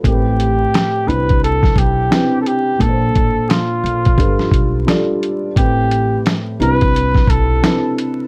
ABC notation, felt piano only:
X:1
M:4/4
L:1/16
Q:"Swing 16ths" 1/4=87
K:Am
V:1 name="Felt piano"
[A,,A,CG_B=B]6 [C,CDEB]4- [C,CDEB] z [C,CDEB]4 | [_B,,_B,DA=Bc]6 z2 [G,DFAB]4 [G,DFAd]4 | [A,,A,CGB]6 [C,CDEB]4- [C,CDEB] z [C,CDEB]4 |]